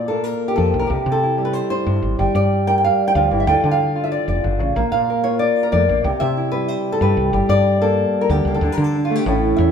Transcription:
0.00 0.31 A#2 medium
0.00 0.88 A#2 medium
0.08 0.88 A#3 medium
0.08 0.24 A4 medium
0.24 0.55 A#4 medium
0.48 0.86 G4 medium
0.56 0.71 F2 medium
0.56 0.88 F3 medium
0.56 0.79 A4 medium
0.74 0.87 B1 medium
0.79 0.89 A#4 medium
0.87 0.97 C2 medium
0.87 1.85 C3 medium
0.87 1.45 G4 medium
1.06 1.60 C3 medium
1.12 1.44 A4 medium
1.23 2.17 E4 soft
1.38 2.17 G3 medium
1.45 1.53 B4 medium
1.53 1.69 C5 medium
1.70 2.18 C5 medium
1.86 2.00 G2 medium
1.86 2.17 C3 medium
2.02 2.16 G#1 medium
2.19 2.26 G1 medium
2.19 3.47 G3 medium
2.19 2.66 G5 soft
2.35 2.89 G2 medium
2.35 2.99 D5 medium
2.67 3.45 A#4 medium
2.67 2.77 G5 medium
2.78 2.83 G5 medium
2.84 3.07 F5 medium
3.08 3.15 G5 medium
3.15 3.28 D2 medium
3.15 3.31 F3 medium
3.15 3.47 F5 medium
3.31 3.45 G1 medium
3.31 3.47 E3 medium
3.40 3.47 E5 medium
3.47 3.54 D2 medium
3.47 4.42 D3 medium
3.47 3.95 F4 soft
3.47 4.75 A4 soft
3.47 3.64 D5 soft
3.47 3.71 G5 medium
3.64 4.17 D3 medium
3.64 4.03 D5 soft
3.71 4.36 F5 medium
3.96 4.74 F4 medium
4.04 4.11 E5 medium
4.12 4.27 D5 medium
4.28 4.42 F1 medium
4.28 4.76 D5 medium
4.44 4.58 G1 medium
4.44 4.60 D3 medium
4.59 4.74 A1 medium
4.59 4.75 C#3 medium
4.76 4.83 A#1 medium
4.76 5.87 A#3 medium
4.76 4.91 F5 soft
4.92 5.46 A#2 medium
4.92 5.56 F5 medium
5.10 5.62 A#4 soft
5.23 5.71 F4 medium
5.23 5.39 C#5 medium
5.39 5.71 D5 medium
5.63 6.04 A#4 medium
5.72 5.86 F2 medium
5.72 5.88 A3 medium
5.72 6.04 D5 medium
5.88 6.02 A#1 medium
5.88 6.04 A#3 medium
6.04 6.11 C2 medium
6.04 7.31 C3 medium
6.04 6.51 G4 soft
6.20 6.75 C3 medium
6.20 6.68 E5 medium
6.37 7.31 E4 soft
6.52 7.00 G3 medium
6.52 7.00 B4 medium
6.68 6.92 C5 medium
6.92 7.33 A4 medium
7.01 7.14 G2 medium
7.01 7.31 G3 medium
7.01 7.33 B4 medium
7.17 7.30 C2 medium
7.33 7.40 G1 medium
7.33 8.60 G3 medium
7.33 7.48 D5 soft
7.49 8.03 G2 medium
7.49 7.81 D5 loud
7.81 8.46 A#3 medium
7.81 8.53 A4 medium
8.21 8.30 A#4 medium
8.29 8.43 D2 medium
8.29 8.60 D3 medium
8.29 8.62 G4 medium
8.45 8.59 C#2 medium
8.45 8.61 A#3 soft
8.55 8.72 A4 medium
8.61 8.68 D2 loud
8.61 9.26 D3 medium
8.72 8.84 A#4 medium
8.78 9.18 D3 medium
8.84 9.25 A4 medium
8.95 9.25 D4 soft
9.05 9.16 F4 medium
9.10 9.24 A3 medium
9.16 9.26 G4 medium
9.26 9.53 A1 loud
9.26 9.71 A2 medium
9.26 9.71 A3 soft
9.26 9.59 C#4 medium
9.26 9.71 E4 soft
9.26 9.56 A4 medium
9.57 9.71 E2 medium
9.57 9.71 C#4 soft
9.57 9.71 E5 medium

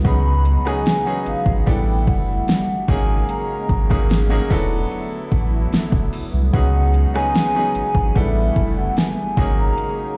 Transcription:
0.00 1.63 F#3 medium
0.00 2.85 B3 medium
0.04 0.58 C#2 loud
0.04 1.66 C#3 medium
0.04 0.58 F#3 medium
0.04 1.66 G#3 medium
0.04 0.58 B3 medium
0.04 0.58 C#4 medium
0.04 1.66 D#4 medium
0.04 0.59 D#4 medium
0.04 0.59 G#4 medium
0.04 0.69 B5 loud
0.04 kick loud
0.04 closed hi-hat medium
0.45 closed hi-hat medium
0.65 1.01 F#3 medium
0.65 1.01 B3 medium
0.65 1.01 C#4 medium
0.65 1.02 D#4 medium
0.65 1.02 G#4 medium
0.65 1.27 G#5 loud
0.65 cross-stick medium
0.86 snare loud
0.86 closed hi-hat medium
1.06 1.67 F#3 medium
1.06 1.65 B3 medium
1.06 1.67 C#4 medium
1.06 1.67 D#4 medium
1.06 1.68 G#4 medium
1.26 1.35 G#1 soft
1.26 1.65 F5 medium
1.26 closed hi-hat medium
1.46 1.64 G#1 loud
1.46 kick medium
1.66 2.09 A1 loud
1.66 2.87 D3 medium
1.66 2.73 G3 medium
1.66 2.87 G3 medium
1.66 2.87 A3 medium
1.66 2.74 B3 medium
1.66 2.74 D4 medium
1.66 2.87 E4 medium
1.66 2.74 E4 medium
1.66 2.74 A4 medium
1.66 2.10 G5 loud
1.66 kick medium
1.66 closed hi-hat medium
2.07 2.43 F#1 loud
2.07 2.92 F#5 loud
2.07 kick loud
2.07 closed hi-hat medium
2.48 snare loud
2.48 closed hi-hat medium
2.88 3.24 G#1 loud
2.88 4.49 C#3 medium
2.88 3.77 F#3 medium
2.88 8.12 F#3 medium
2.88 4.49 G#3 medium
2.88 3.77 A#3 medium
2.88 4.49 A#3 medium
2.88 3.78 C#4 medium
2.88 4.49 D#4 medium
2.88 3.78 D#4 medium
2.88 3.78 G#4 medium
2.88 3.32 G#5 loud
2.88 kick loud
2.88 closed hi-hat medium
3.29 4.11 A#5 loud
3.29 closed hi-hat medium
3.69 4.40 G#1 loud
3.69 kick medium
3.69 closed hi-hat medium
3.89 4.25 F#3 medium
3.89 4.26 A#3 medium
3.89 4.26 C#4 medium
3.89 4.26 D#4 medium
3.89 4.26 G#4 medium
3.89 kick loud
3.89 cross-stick medium
4.10 snare loud
4.10 closed hi-hat medium
4.30 4.49 F#3 loud
4.30 4.51 A#3 medium
4.30 4.51 C#4 medium
4.30 4.51 D#4 medium
4.30 4.51 G#4 loud
4.50 4.86 E1 loud
4.50 6.51 D3 medium
4.50 5.93 F#3 loud
4.50 6.51 A3 medium
4.50 5.93 B3 loud
4.50 8.12 B3 medium
4.50 5.93 D4 medium
4.50 6.51 E4 medium
4.50 5.93 E4 medium
4.50 5.93 A4 loud
4.50 kick loud
4.50 closed hi-hat medium
4.91 closed hi-hat medium
5.32 5.67 A1 medium
5.32 kick medium
5.32 closed hi-hat medium
5.73 5.81 F#1 soft
5.73 snare loud
5.73 closed hi-hat medium
5.92 6.10 F#1 loud
5.92 kick medium
6.13 open hi-hat medium
6.34 6.51 C2 loud
6.53 7.06 C#2 loud
6.53 8.14 C#3 medium
6.53 7.07 F#3 medium
6.53 8.14 G#3 medium
6.53 7.07 B3 medium
6.53 7.07 C#4 medium
6.53 8.14 D#4 medium
6.53 7.07 D#4 medium
6.53 7.07 G#4 medium
6.53 7.11 F#5 loud
6.53 kick loud
6.53 closed hi-hat medium
6.94 closed hi-hat medium
7.14 7.50 F#3 medium
7.14 7.50 B3 medium
7.14 7.50 C#4 medium
7.14 7.50 D#4 medium
7.14 7.50 G#4 medium
7.14 8.18 G#5 loud
7.14 cross-stick medium
7.35 snare loud
7.35 closed hi-hat medium
7.55 8.16 F#3 medium
7.55 8.14 B3 medium
7.55 8.16 C#4 medium
7.55 8.16 D#4 medium
7.55 8.16 G#4 medium
7.75 7.83 G#1 soft
7.75 closed hi-hat medium
7.95 8.13 G#1 medium
7.95 kick medium
8.15 8.51 A1 loud
8.15 9.36 D3 medium
8.15 9.22 G3 medium
8.15 9.36 G3 medium
8.15 9.36 A3 medium
8.15 9.36 B3 medium
8.15 9.22 B3 medium
8.15 9.23 D4 medium
8.15 9.36 E4 medium
8.15 9.23 E4 medium
8.15 9.23 A4 medium
8.15 8.77 E5 loud
8.15 kick medium
8.15 closed hi-hat medium
8.56 8.91 F#1 medium
8.56 kick medium
8.56 closed hi-hat medium
8.77 8.96 F#5 medium
8.97 9.54 G#5 loud
8.97 snare loud
8.97 closed hi-hat medium
9.37 9.73 G#1 loud
9.37 10.17 C#3 medium
9.37 10.17 F#3 medium
9.37 10.17 G#3 medium
9.37 10.17 A#3 medium
9.37 10.17 C#4 medium
9.37 10.17 D#4 medium
9.37 10.17 G#4 medium
9.37 kick loud
9.37 closed hi-hat medium
9.59 10.15 A#5 loud
9.78 closed hi-hat medium

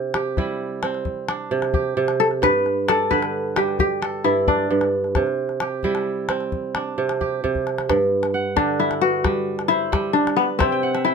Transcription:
0.00 1.50 C3 medium
0.14 1.56 G4 medium
0.14 calabash click medium
0.37 2.47 G3 medium
0.37 1.95 E4 medium
0.37 calabash thump medium
0.37 calabash click soft
0.83 2.63 C4 medium
0.83 calabash click medium
0.94 calabash click soft
1.05 calabash thump medium
1.28 2.96 D4 medium
1.28 calabash click medium
1.51 1.96 C3 medium
1.62 calabash click soft
1.74 3.15 G4 medium
1.74 calabash thump medium
1.97 2.47 C3 medium
2.08 calabash click soft
2.20 2.26 A4 medium
2.31 calabash click soft
2.42 4.23 G2 medium
2.42 3.10 B4 loud
2.42 calabash thump medium
2.42 calabash click medium
2.66 calabash click soft
2.88 4.21 A4 medium
2.88 3.99 D5 medium
2.88 calabash click medium
3.10 5.20 D3 medium
3.10 4.34 B4 medium
3.10 calabash thump medium
3.10 calabash click soft
3.23 calabash click soft
3.56 5.20 G3 medium
3.56 3.79 G4 medium
3.56 calabash click medium
3.68 calabash click soft
3.79 5.21 G4 medium
3.79 calabash thump medium
4.02 5.33 A4 medium
4.02 calabash click medium
4.24 4.69 G2 medium
4.24 5.81 E4 medium
4.47 6.16 D4 medium
4.47 5.58 D5 medium
4.47 calabash thump medium
4.71 5.20 G2 medium
4.81 calabash click soft
5.04 calabash click soft
5.15 6.97 C3 medium
5.15 calabash thump medium
5.15 calabash click medium
5.27 calabash click soft
5.49 calabash click soft
5.60 7.03 G4 medium
5.60 calabash click medium
5.83 7.93 G3 medium
5.83 7.41 E4 medium
5.83 calabash thump medium
5.95 calabash click soft
6.29 8.09 C4 medium
6.29 calabash click medium
6.40 calabash click soft
6.52 calabash thump medium
6.75 8.43 D4 medium
6.75 calabash click medium
6.98 7.43 C3 medium
7.09 calabash click soft
7.21 8.40 G4 medium
7.21 calabash thump medium
7.44 7.93 C3 medium
7.44 calabash thump soft
7.55 calabash thump soft
7.67 calabash click soft
7.78 calabash click soft
7.89 10.23 G2 medium
7.89 calabash thump medium
7.89 calabash click medium
8.23 calabash click soft
8.34 9.30 F#5 medium
8.56 10.65 D3 medium
8.56 10.13 D4 medium
8.56 calabash thump medium
8.56 calabash click medium
8.80 9.68 E4 medium
8.91 calabash click soft
9.01 10.48 F#4 loud
9.01 9.76 B4 medium
9.01 calabash click soft
9.24 9.91 G3 medium
9.24 calabash thump medium
9.24 calabash click medium
9.59 calabash click medium
9.68 11.04 E4 loud
9.68 10.44 C5 medium
9.68 calabash click soft
9.92 10.65 G3 medium
9.92 calabash thump medium
9.92 calabash click medium
10.13 11.14 D4 medium
10.27 calabash click medium
10.36 10.43 B3 medium
10.36 11.14 B4 medium
10.59 11.14 C3 medium
10.59 11.14 C4 medium
10.59 10.94 E5 medium
10.59 calabash thump medium
10.59 calabash click medium
10.72 11.05 G5 medium
10.83 11.12 F#5 medium
10.94 11.14 E5 medium
10.94 calabash click medium
11.05 11.14 E4 medium
11.05 11.14 G5 medium

